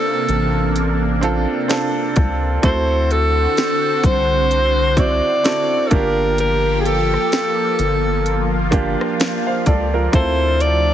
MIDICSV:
0, 0, Header, 1, 6, 480
1, 0, Start_track
1, 0, Key_signature, -1, "minor"
1, 0, Tempo, 937500
1, 1347, Time_signature, 4, 2, 24, 8
1, 5601, End_track
2, 0, Start_track
2, 0, Title_t, "Alto saxophone"
2, 0, Program_c, 0, 65
2, 0, Note_on_c, 0, 69, 92
2, 612, Note_off_c, 0, 69, 0
2, 1356, Note_on_c, 0, 72, 95
2, 1596, Note_on_c, 0, 69, 98
2, 1604, Note_off_c, 0, 72, 0
2, 2076, Note_on_c, 0, 72, 112
2, 2084, Note_off_c, 0, 69, 0
2, 2556, Note_on_c, 0, 74, 113
2, 2564, Note_off_c, 0, 72, 0
2, 3008, Note_on_c, 0, 69, 67
2, 3016, Note_off_c, 0, 74, 0
2, 3038, Note_on_c, 0, 70, 96
2, 3046, Note_off_c, 0, 69, 0
2, 3273, Note_off_c, 0, 70, 0
2, 3278, Note_on_c, 0, 70, 94
2, 3487, Note_on_c, 0, 68, 60
2, 3494, Note_off_c, 0, 70, 0
2, 3515, Note_on_c, 0, 69, 97
2, 3523, Note_off_c, 0, 68, 0
2, 4471, Note_off_c, 0, 69, 0
2, 5197, Note_on_c, 0, 72, 91
2, 5435, Note_on_c, 0, 74, 110
2, 5443, Note_off_c, 0, 72, 0
2, 5601, Note_off_c, 0, 74, 0
2, 5601, End_track
3, 0, Start_track
3, 0, Title_t, "Grand piano"
3, 0, Program_c, 1, 0
3, 0, Control_c, 1, 64, 127
3, 0, Note_on_c, 1, 60, 78
3, 0, Note_on_c, 1, 62, 69
3, 0, Note_on_c, 1, 65, 70
3, 0, Note_on_c, 1, 72, 86
3, 54, Note_off_c, 1, 60, 0
3, 56, Note_off_c, 1, 62, 0
3, 59, Note_off_c, 1, 65, 0
3, 61, Note_off_c, 1, 72, 0
3, 621, Note_on_c, 1, 60, 80
3, 627, Note_on_c, 1, 62, 79
3, 632, Note_on_c, 1, 65, 74
3, 636, Note_on_c, 1, 69, 96
3, 791, Note_off_c, 1, 60, 0
3, 794, Note_off_c, 1, 62, 0
3, 796, Note_off_c, 1, 65, 0
3, 799, Note_off_c, 1, 69, 0
3, 861, Note_on_c, 1, 60, 89
3, 867, Note_on_c, 1, 62, 84
3, 872, Note_on_c, 1, 65, 76
3, 876, Note_on_c, 1, 69, 102
3, 1181, Note_off_c, 1, 60, 0
3, 1183, Note_off_c, 1, 62, 0
3, 1186, Note_off_c, 1, 65, 0
3, 1188, Note_off_c, 1, 69, 0
3, 1343, Note_on_c, 1, 60, 76
3, 1348, Note_on_c, 1, 64, 70
3, 1353, Note_on_c, 1, 66, 68
3, 1354, Control_c, 1, 64, 0
3, 1357, Note_on_c, 1, 69, 88
3, 1458, Control_c, 1, 64, 127
3, 1974, Note_off_c, 1, 60, 0
3, 1977, Note_off_c, 1, 64, 0
3, 1979, Note_off_c, 1, 66, 0
3, 1981, Note_off_c, 1, 69, 0
3, 2542, Note_on_c, 1, 60, 71
3, 2547, Note_on_c, 1, 64, 66
3, 2552, Note_on_c, 1, 66, 64
3, 2557, Note_on_c, 1, 72, 75
3, 2711, Note_off_c, 1, 60, 0
3, 2714, Note_off_c, 1, 64, 0
3, 2716, Note_off_c, 1, 66, 0
3, 2719, Note_off_c, 1, 72, 0
3, 2783, Note_on_c, 1, 60, 71
3, 2787, Note_on_c, 1, 64, 66
3, 2793, Note_on_c, 1, 66, 69
3, 2798, Note_on_c, 1, 69, 82
3, 3021, Note_on_c, 1, 58, 82
3, 3025, Note_off_c, 1, 60, 0
3, 3026, Note_on_c, 1, 62, 72
3, 3027, Note_off_c, 1, 64, 0
3, 3030, Note_off_c, 1, 66, 0
3, 3031, Note_on_c, 1, 65, 70
3, 3032, Note_off_c, 1, 69, 0
3, 3034, Control_c, 1, 64, 0
3, 3037, Note_on_c, 1, 67, 86
3, 3123, Control_c, 1, 64, 127
3, 3800, Note_off_c, 1, 58, 0
3, 3802, Note_off_c, 1, 62, 0
3, 3805, Note_off_c, 1, 65, 0
3, 3807, Note_off_c, 1, 67, 0
3, 4460, Note_on_c, 1, 58, 82
3, 4465, Note_on_c, 1, 62, 77
3, 4470, Note_on_c, 1, 65, 76
3, 4475, Note_on_c, 1, 67, 88
3, 4630, Note_off_c, 1, 58, 0
3, 4633, Note_off_c, 1, 62, 0
3, 4635, Note_off_c, 1, 65, 0
3, 4638, Note_off_c, 1, 67, 0
3, 4847, Note_on_c, 1, 77, 64
3, 4850, Note_on_c, 1, 72, 54
3, 4943, Note_off_c, 1, 77, 0
3, 4944, Note_off_c, 1, 72, 0
3, 4949, Note_on_c, 1, 74, 75
3, 4952, Note_on_c, 1, 69, 61
3, 5080, Note_off_c, 1, 74, 0
3, 5082, Note_off_c, 1, 69, 0
3, 5089, Note_on_c, 1, 70, 66
3, 5092, Note_on_c, 1, 65, 59
3, 5182, Note_on_c, 1, 60, 73
3, 5185, Note_off_c, 1, 65, 0
3, 5187, Note_on_c, 1, 64, 67
3, 5192, Note_on_c, 1, 65, 68
3, 5194, Control_c, 1, 64, 0
3, 5198, Note_on_c, 1, 69, 84
3, 5273, Control_c, 1, 64, 127
3, 5316, Note_off_c, 1, 70, 0
3, 5601, Note_off_c, 1, 60, 0
3, 5601, Note_off_c, 1, 64, 0
3, 5601, Note_off_c, 1, 65, 0
3, 5601, Note_off_c, 1, 69, 0
3, 5601, End_track
4, 0, Start_track
4, 0, Title_t, "Analog synth pad"
4, 0, Program_c, 2, 89
4, 0, Note_on_c, 2, 48, 87
4, 0, Note_on_c, 2, 58, 79
4, 0, Note_on_c, 2, 62, 95
4, 1327, Note_off_c, 2, 48, 0
4, 1327, Note_off_c, 2, 62, 0
4, 1329, Note_off_c, 2, 58, 0
4, 1348, Note_on_c, 2, 60, 81
4, 1348, Note_on_c, 2, 66, 89
4, 1349, Note_on_c, 2, 50, 84
4, 3011, Note_off_c, 2, 50, 0
4, 3011, Note_off_c, 2, 60, 0
4, 3011, Note_off_c, 2, 66, 0
4, 3030, Note_on_c, 2, 53, 83
4, 3030, Note_on_c, 2, 58, 78
4, 3031, Note_on_c, 2, 67, 85
4, 3980, Note_off_c, 2, 67, 0
4, 3989, Note_on_c, 2, 65, 95
4, 5168, Note_off_c, 2, 58, 0
4, 5176, Note_off_c, 2, 65, 0
4, 5187, Note_on_c, 2, 48, 87
4, 5187, Note_on_c, 2, 62, 95
4, 5601, Note_off_c, 2, 48, 0
4, 5601, Note_off_c, 2, 53, 0
4, 5601, Note_off_c, 2, 62, 0
4, 5601, End_track
5, 0, Start_track
5, 0, Title_t, "Analog synth bass"
5, 0, Program_c, 3, 38
5, 149, Note_on_c, 3, 33, 98
5, 747, Note_off_c, 3, 33, 0
5, 1109, Note_on_c, 3, 37, 89
5, 1323, Note_off_c, 3, 37, 0
5, 1348, Note_on_c, 3, 38, 104
5, 1776, Note_off_c, 3, 38, 0
5, 2067, Note_on_c, 3, 36, 84
5, 2666, Note_off_c, 3, 36, 0
5, 3028, Note_on_c, 3, 31, 102
5, 3670, Note_off_c, 3, 31, 0
5, 3991, Note_on_c, 3, 31, 92
5, 4588, Note_off_c, 3, 31, 0
5, 4950, Note_on_c, 3, 37, 95
5, 5163, Note_off_c, 3, 37, 0
5, 5189, Note_on_c, 3, 38, 103
5, 5601, Note_off_c, 3, 38, 0
5, 5601, End_track
6, 0, Start_track
6, 0, Title_t, "Drums"
6, 146, Note_on_c, 9, 42, 72
6, 197, Note_off_c, 9, 42, 0
6, 387, Note_on_c, 9, 42, 71
6, 438, Note_off_c, 9, 42, 0
6, 628, Note_on_c, 9, 42, 70
6, 679, Note_off_c, 9, 42, 0
6, 868, Note_on_c, 9, 42, 68
6, 873, Note_on_c, 9, 38, 114
6, 919, Note_off_c, 9, 42, 0
6, 924, Note_off_c, 9, 38, 0
6, 1105, Note_on_c, 9, 42, 77
6, 1108, Note_on_c, 9, 36, 95
6, 1156, Note_off_c, 9, 42, 0
6, 1159, Note_off_c, 9, 36, 0
6, 1347, Note_on_c, 9, 36, 106
6, 1347, Note_on_c, 9, 42, 78
6, 1398, Note_off_c, 9, 36, 0
6, 1398, Note_off_c, 9, 42, 0
6, 1590, Note_on_c, 9, 42, 63
6, 1641, Note_off_c, 9, 42, 0
6, 1829, Note_on_c, 9, 42, 73
6, 1834, Note_on_c, 9, 38, 119
6, 1880, Note_off_c, 9, 42, 0
6, 1885, Note_off_c, 9, 38, 0
6, 2066, Note_on_c, 9, 36, 96
6, 2068, Note_on_c, 9, 42, 70
6, 2117, Note_off_c, 9, 36, 0
6, 2119, Note_off_c, 9, 42, 0
6, 2309, Note_on_c, 9, 42, 68
6, 2360, Note_off_c, 9, 42, 0
6, 2544, Note_on_c, 9, 36, 98
6, 2547, Note_on_c, 9, 42, 71
6, 2595, Note_off_c, 9, 36, 0
6, 2598, Note_off_c, 9, 42, 0
6, 2787, Note_on_c, 9, 42, 70
6, 2793, Note_on_c, 9, 38, 112
6, 2839, Note_off_c, 9, 42, 0
6, 2844, Note_off_c, 9, 38, 0
6, 3025, Note_on_c, 9, 42, 75
6, 3027, Note_on_c, 9, 36, 105
6, 3076, Note_off_c, 9, 42, 0
6, 3078, Note_off_c, 9, 36, 0
6, 3268, Note_on_c, 9, 42, 78
6, 3319, Note_off_c, 9, 42, 0
6, 3510, Note_on_c, 9, 42, 62
6, 3561, Note_off_c, 9, 42, 0
6, 3654, Note_on_c, 9, 37, 63
6, 3706, Note_off_c, 9, 37, 0
6, 3748, Note_on_c, 9, 42, 72
6, 3753, Note_on_c, 9, 38, 119
6, 3800, Note_off_c, 9, 42, 0
6, 3804, Note_off_c, 9, 38, 0
6, 3988, Note_on_c, 9, 42, 74
6, 4039, Note_off_c, 9, 42, 0
6, 4228, Note_on_c, 9, 42, 71
6, 4279, Note_off_c, 9, 42, 0
6, 4464, Note_on_c, 9, 36, 102
6, 4468, Note_on_c, 9, 42, 72
6, 4515, Note_off_c, 9, 36, 0
6, 4519, Note_off_c, 9, 42, 0
6, 4614, Note_on_c, 9, 37, 81
6, 4665, Note_off_c, 9, 37, 0
6, 4709, Note_on_c, 9, 42, 68
6, 4714, Note_on_c, 9, 38, 109
6, 4760, Note_off_c, 9, 42, 0
6, 4766, Note_off_c, 9, 38, 0
6, 4947, Note_on_c, 9, 42, 74
6, 4948, Note_on_c, 9, 36, 85
6, 4998, Note_off_c, 9, 42, 0
6, 5000, Note_off_c, 9, 36, 0
6, 5187, Note_on_c, 9, 36, 115
6, 5188, Note_on_c, 9, 42, 80
6, 5238, Note_off_c, 9, 36, 0
6, 5239, Note_off_c, 9, 42, 0
6, 5429, Note_on_c, 9, 42, 61
6, 5481, Note_off_c, 9, 42, 0
6, 5601, End_track
0, 0, End_of_file